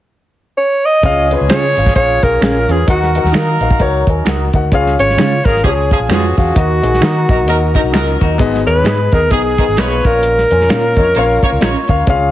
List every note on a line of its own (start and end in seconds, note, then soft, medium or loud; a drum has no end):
0.57 0.87 C#5 medium
0.86 1.31 D#5 loud
1.03 1.34 C#2 loud
1.03 1.74 C#3 medium
1.03 2.66 F3 medium
1.03 2.65 C#4 medium
1.03 1.24 C#4 loud
1.03 1.24 F4 medium
1.03 2.66 G#4 medium
1.03 1.25 G#4 medium
1.03 1.25 F5 loud
1.03 kick loud
1.03 closed hi-hat medium
1.31 1.45 C#4 medium
1.31 1.45 F4 medium
1.31 1.46 G#4 medium
1.31 1.46 B4 loud
1.31 closed hi-hat medium
1.41 1.48 C#2 medium
1.49 1.62 C#4 medium
1.49 1.70 C#4 medium
1.49 1.63 F4 medium
1.49 1.71 F4 medium
1.49 1.63 G#4 medium
1.49 1.71 G#4 medium
1.49 1.92 C#5 loud
1.49 finger snap medium
1.49 snare loud
1.49 closed hi-hat medium
1.77 1.93 G#1 medium
1.77 1.91 C#4 medium
1.77 1.91 F4 medium
1.77 1.92 G#4 medium
1.77 1.92 F5 medium
1.77 closed hi-hat medium
1.86 kick medium
1.86 snare soft
1.95 2.19 A#1 medium
1.95 2.16 C#4 medium
1.95 2.16 F4 medium
1.95 2.17 G#4 medium
1.95 2.25 C#5 loud
1.95 2.17 F5 medium
1.95 kick medium
1.95 closed hi-hat medium
2.23 2.38 B1 medium
2.23 2.37 C#4 medium
2.23 2.37 F4 medium
2.23 2.38 G#4 medium
2.23 2.73 A#4 medium
2.23 2.38 F5 medium
2.23 kick medium
2.23 closed hi-hat soft
2.41 2.64 A#1 medium
2.41 2.55 C#4 medium
2.41 2.63 C#4 medium
2.41 2.55 F4 medium
2.41 2.63 F4 medium
2.41 2.63 G#4 medium
2.41 2.56 G#4 medium
2.41 2.63 F5 medium
2.41 finger snap medium
2.41 snare loud
2.41 closed hi-hat medium
2.68 2.84 E2 medium
2.68 2.76 C#4 medium
2.68 2.83 C#4 medium
2.68 2.76 F4 medium
2.68 2.83 F4 medium
2.68 2.76 G#4 medium
2.68 2.84 G#4 medium
2.68 2.89 G#4 medium
2.68 2.84 B4 medium
2.68 closed hi-hat medium
2.87 3.19 D#2 loud
2.87 3.58 D#3 medium
2.87 4.50 F#3 medium
2.87 3.08 D#4 loud
2.87 4.50 D#4 medium
2.87 3.09 F#4 medium
2.87 3.32 F#4 medium
2.87 4.50 A#4 medium
2.87 3.09 A#4 medium
2.87 3.09 F#5 loud
2.87 kick loud
2.87 closed hi-hat medium
3.03 snare soft
3.15 3.29 D#4 medium
3.15 3.30 F#4 medium
3.15 3.30 A#4 medium
3.15 3.30 F#5 medium
3.15 closed hi-hat medium
3.24 3.32 D#2 medium
3.24 snare soft
3.32 3.56 D#3 loud
3.32 3.46 D#4 medium
3.32 3.54 D#4 medium
3.32 3.47 F#4 medium
3.32 3.55 A#4 medium
3.32 3.48 A#4 medium
3.32 3.55 F5 medium
3.32 finger snap medium
3.32 snare loud
3.32 closed hi-hat medium
3.60 3.76 A#1 medium
3.60 3.75 D#4 medium
3.60 3.75 F#4 medium
3.60 3.76 A#4 medium
3.60 3.76 F5 medium
3.60 closed hi-hat medium
3.70 kick medium
3.79 4.03 C#2 medium
3.79 4.00 D#4 medium
3.79 4.01 F#4 medium
3.79 4.01 A#4 medium
3.79 4.01 C#5 loud
3.79 kick medium
3.79 closed hi-hat medium
4.07 4.23 D#2 medium
4.07 4.22 D#4 medium
4.07 4.23 A#4 medium
4.07 4.23 G#5 medium
4.07 kick medium
4.07 closed hi-hat soft
4.25 4.49 C#2 medium
4.25 4.39 D#4 medium
4.25 4.47 D#4 medium
4.25 4.39 F#4 medium
4.25 4.47 F#4 medium
4.25 4.40 A#4 medium
4.25 4.48 A#4 medium
4.25 4.48 F#5 medium
4.25 finger snap loud
4.25 snare medium
4.25 closed hi-hat medium
4.53 4.69 D2 medium
4.53 4.68 D#4 medium
4.53 4.68 F#4 medium
4.53 4.68 A#4 medium
4.53 4.68 F#5 medium
4.53 kick medium
4.53 closed hi-hat medium
4.71 4.95 C#2 loud
4.71 5.42 C#3 medium
4.71 4.93 C#4 loud
4.71 4.93 F4 loud
4.71 4.94 G#4 loud
4.71 4.94 F5 loud
4.71 kick loud
4.71 closed hi-hat medium
4.87 snare soft
4.99 5.15 G#1 medium
4.99 5.13 C#4 medium
4.99 5.46 C#5 medium
4.99 closed hi-hat medium
5.10 snare soft
5.17 5.41 C#3 medium
5.17 5.31 G#3 medium
5.17 5.31 C#4 medium
5.17 5.39 C#4 medium
5.17 5.32 F4 medium
5.17 5.39 F4 medium
5.17 5.39 G#4 medium
5.17 5.40 F5 medium
5.17 finger snap medium
5.17 snare loud
5.17 closed hi-hat medium
5.45 5.61 G#1 medium
5.45 5.54 F3 medium
5.45 5.60 C#4 medium
5.45 5.54 C#4 medium
5.45 5.60 F4 medium
5.45 5.54 G#4 medium
5.45 5.60 G#4 medium
5.45 5.64 A#4 medium
5.45 5.61 F5 medium
5.45 kick medium
5.45 closed hi-hat medium
5.56 snare soft
5.64 5.95 C#2 medium
5.64 5.73 F3 medium
5.64 5.73 C#4 medium
5.64 5.85 C#4 medium
5.64 5.85 F4 medium
5.64 5.73 G#4 medium
5.64 6.13 G#4 medium
5.64 5.85 G#4 medium
5.64 5.86 C#5 medium
5.64 kick medium
5.64 closed hi-hat medium
5.91 5.98 F3 medium
5.91 6.05 C#4 medium
5.91 5.98 C#4 medium
5.91 6.06 F4 medium
5.91 5.98 G#4 medium
5.91 6.06 G#4 medium
5.91 6.06 F5 medium
5.91 kick medium
5.91 closed hi-hat soft
5.99 6.08 A#1 medium
6.09 6.32 F2 medium
6.09 6.54 F3 medium
6.09 6.23 G#3 medium
6.09 6.30 C#4 medium
6.09 6.23 C#4 medium
6.09 6.54 C#4 medium
6.09 6.30 F4 medium
6.09 6.24 F4 medium
6.09 6.37 F#4 medium
6.09 6.31 G#4 medium
6.09 6.54 G#4 loud
6.09 6.31 B4 medium
6.09 finger snap medium
6.09 snare medium
6.09 closed hi-hat medium
6.37 6.53 E2 medium
6.37 6.51 C#4 medium
6.37 6.51 F4 medium
6.37 8.17 F#4 medium
6.37 6.52 G#4 medium
6.37 6.52 F5 medium
6.37 kick medium
6.37 open hi-hat soft
6.55 6.79 D#2 medium
6.55 7.25 D#3 medium
6.55 6.76 A#3 medium
6.55 6.76 D#4 medium
6.55 6.77 F#4 medium
6.55 6.77 D#5 loud
6.55 kick loud
6.55 closed hi-hat medium
6.82 6.99 A#1 medium
6.82 6.97 A#3 medium
6.82 6.97 D#4 medium
6.82 6.97 F#4 medium
6.82 6.98 G#4 medium
6.82 closed hi-hat medium
6.94 snare soft
7.00 7.24 D#3 medium
7.00 7.23 A#3 medium
7.00 7.15 D#4 medium
7.00 7.15 F#4 medium
7.00 7.16 A#4 medium
7.00 finger snap medium
7.00 snare loud
7.00 closed hi-hat medium
7.28 7.46 A#1 medium
7.28 7.37 F#3 medium
7.28 7.43 A#3 medium
7.28 7.43 D#4 medium
7.28 7.37 D#4 medium
7.28 7.43 F#4 medium
7.28 7.38 A#4 medium
7.28 7.44 D#5 medium
7.28 kick medium
7.28 closed hi-hat medium
7.46 7.78 D#2 medium
7.46 7.58 F#3 medium
7.46 7.68 A#3 medium
7.46 7.68 D#4 medium
7.46 7.57 D#4 medium
7.46 7.69 F#4 medium
7.46 7.58 A#4 medium
7.46 7.69 D#5 loud
7.46 closed hi-hat medium
7.74 7.81 F#3 medium
7.74 7.89 A#3 medium
7.74 7.89 D#4 medium
7.74 7.81 D#4 medium
7.74 7.93 D#4 medium
7.74 7.89 F#4 medium
7.74 7.81 A#4 medium
7.74 7.90 D#5 medium
7.74 kick medium
7.74 closed hi-hat medium
7.83 7.92 B1 medium
7.92 8.16 C#2 medium
7.92 8.37 F#3 medium
7.92 8.14 A#3 medium
7.92 8.20 C#4 medium
7.92 8.06 D#4 medium
7.92 8.14 D#4 medium
7.92 8.37 D#4 medium
7.92 8.20 F4 medium
7.92 8.14 F#4 medium
7.92 8.07 F#4 medium
7.92 8.38 A#4 loud
7.92 8.07 A#4 medium
7.92 8.14 D#5 loud
7.92 finger snap medium
7.92 snare loud
7.92 closed hi-hat medium
8.08 closed hi-hat medium
8.20 8.37 D#2 medium
8.20 8.34 A#3 medium
8.20 8.35 D#4 medium
8.20 8.65 D#4 medium
8.20 8.35 F#4 medium
8.20 8.65 F#4 medium
8.20 8.35 A#4 medium
8.20 kick medium
8.20 closed hi-hat medium
8.38 8.63 G#1 medium
8.38 9.09 G#2 medium
8.38 8.60 B3 loud
8.38 8.60 D#4 medium
8.38 8.60 G#4 loud
8.38 8.61 D#5 loud
8.38 kick loud
8.38 closed hi-hat medium
8.55 snare soft
8.65 8.82 D#2 medium
8.65 8.80 B3 medium
8.65 8.80 D#4 medium
8.65 8.81 G#4 medium
8.65 9.15 B4 loud
8.65 8.81 C#5 medium
8.65 closed hi-hat medium
8.83 9.08 G#2 medium
8.83 9.05 B3 medium
8.83 8.98 D#4 medium
8.83 9.06 D#4 medium
8.83 9.06 G#4 medium
8.83 8.99 G#4 medium
8.83 8.99 B4 medium
8.83 9.06 D#5 medium
8.83 finger snap medium
8.83 snare loud
8.83 closed hi-hat medium
9.11 9.31 D#2 medium
9.11 9.21 D#3 medium
9.11 9.26 B3 medium
9.11 9.21 B3 medium
9.11 9.27 D#4 medium
9.11 9.21 G#4 medium
9.11 9.27 G#4 medium
9.11 9.33 A#4 medium
9.11 9.27 D#5 medium
9.11 kick medium
9.11 closed hi-hat medium
9.30 9.62 B1 medium
9.30 9.41 D#3 medium
9.30 9.52 B3 medium
9.30 9.41 B3 medium
9.30 9.52 D#4 medium
9.30 9.81 G#4 medium
9.30 9.52 G#4 medium
9.30 9.41 G#4 loud
9.30 9.53 D#5 medium
9.30 kick medium
9.30 closed hi-hat medium
9.58 9.65 D#3 medium
9.58 9.73 B3 medium
9.58 9.65 B3 medium
9.58 9.73 D#4 medium
9.58 9.64 G#4 medium
9.58 9.73 G#4 medium
9.58 9.73 D#5 medium
9.58 kick medium
9.58 closed hi-hat soft
9.68 9.76 G#1 medium
9.76 10.00 B1 medium
9.76 10.22 A#3 medium
9.76 9.99 B3 medium
9.76 9.90 D#4 medium
9.76 9.99 D#4 medium
9.76 10.22 F4 medium
9.76 9.91 G#4 medium
9.76 9.99 G#4 medium
9.76 9.91 B4 medium
9.76 10.08 B4 medium
9.76 10.22 C#5 loud
9.76 9.99 D#5 medium
9.76 finger snap medium
9.76 snare medium
9.76 closed hi-hat medium
10.04 10.43 A#1 medium
10.04 10.66 A#2 medium
10.04 10.40 C#4 medium
10.04 10.40 F4 medium
10.04 10.41 A#4 medium
10.04 11.90 A#4 medium
10.04 10.41 F5 medium
10.04 kick loud
10.04 closed hi-hat medium
10.23 closed hi-hat medium
10.38 snare soft
10.51 10.67 F2 medium
10.51 10.65 C#4 medium
10.51 10.65 F4 medium
10.51 10.65 A#4 medium
10.51 10.66 G#5 medium
10.51 closed hi-hat medium
10.61 snare soft
10.69 10.98 A#2 loud
10.69 10.83 C#4 medium
10.69 10.90 C#4 medium
10.69 10.90 F4 medium
10.69 10.83 F4 medium
10.69 10.84 A#4 medium
10.69 10.91 F5 medium
10.69 finger snap medium
10.69 snare loud
10.69 closed hi-hat medium
10.96 11.12 F2 medium
10.96 11.05 A#3 medium
10.96 11.11 C#4 medium
10.96 11.11 F4 medium
10.96 11.05 F4 medium
10.96 11.11 A#4 medium
10.96 11.06 C#5 medium
10.96 11.12 D#5 medium
10.96 kick medium
10.96 closed hi-hat medium
11.15 11.39 A#1 medium
11.15 11.25 A#3 medium
11.15 11.37 C#4 loud
11.15 11.25 F4 medium
11.15 11.37 F4 medium
11.15 11.37 A#4 medium
11.15 11.25 C#5 medium
11.15 11.38 F5 loud
11.15 closed hi-hat medium
11.42 11.49 A#3 medium
11.42 11.57 C#4 medium
11.42 11.49 F4 medium
11.42 11.57 F4 medium
11.42 11.58 A#4 medium
11.42 11.49 C#5 medium
11.42 11.58 F5 medium
11.42 muted fingered electric bass stroke soft
11.42 kick medium
11.42 closed hi-hat soft
11.52 11.60 C#2 medium
11.60 11.73 A#1 medium
11.60 12.06 A#3 medium
11.60 11.75 C#4 medium
11.60 11.82 C#4 medium
11.60 11.82 F4 medium
11.60 11.75 F4 medium
11.60 12.06 F4 medium
11.60 11.82 A#4 medium
11.60 11.76 A#4 medium
11.60 12.06 C#5 loud
11.60 11.83 D#5 medium
11.60 finger snap medium
11.60 snare loud
11.60 closed hi-hat medium
11.75 closed hi-hat medium
11.88 12.05 D2 medium
11.88 12.03 C#4 medium
11.88 12.03 F4 medium
11.88 12.03 A#4 medium
11.88 12.03 F5 medium
11.88 kick medium
11.88 closed hi-hat medium
12.07 12.30 C#2 loud
12.07 12.31 C#3 medium
12.07 12.28 C#4 loud
12.07 12.29 F4 loud
12.07 12.29 G#4 medium
12.07 12.29 F5 loud
12.07 kick loud
12.07 closed hi-hat medium